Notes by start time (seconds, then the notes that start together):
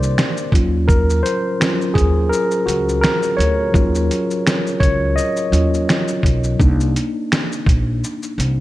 Already playing: C2 D#3 A#3 D4 C5 D5
0.03 shaker
0.18 finger snap, snare, shaker
0.37 shaker
0.52 D#2 F#3 C#4 F4, kick, closed hi-hat, shaker
0.88 A#4, kick, shaker
1.10 shaker
1.23 C5, closed hi-hat, shaker
1.60 F#3 C#4 F4, finger snap, snare, shaker
1.81 shaker
1.94 D#2 G#4, kick
1.98 closed hi-hat, shaker
2.29 A#4, shaker
2.51 shaker
2.66 C#2 F#4, closed hi-hat, shaker
2.89 shaker
3.01 A#4, finger snap, snare, shaker
3.23 shaker
3.37 D2 C#5, closed hi-hat, shaker
3.72 D#2 F#3 C#4 F4, kick, shaker
3.95 shaker
4.11 closed hi-hat, shaker
4.31 shaker
4.47 finger snap, snare, shaker
4.67 shaker
4.80 C#2 C#5, kick, closed hi-hat, shaker
5.16 D#5, shaker
5.37 shaker
5.52 D#2 F#3 C#4 F4, closed hi-hat, shaker
5.74 shaker
5.89 finger snap, snare, shaker
6.08 shaker
6.23 B1, kick, closed hi-hat, shaker
6.44 shaker
6.59 C2 A#3 D4 D#4, kick, shaker
6.80 shaker
6.96 closed hi-hat, shaker
7.32 finger snap, snare, shaker
7.52 shaker
7.66 A#1, kick, closed hi-hat, shaker
8.04 shaker
8.23 shaker
8.38 C2, closed hi-hat, shaker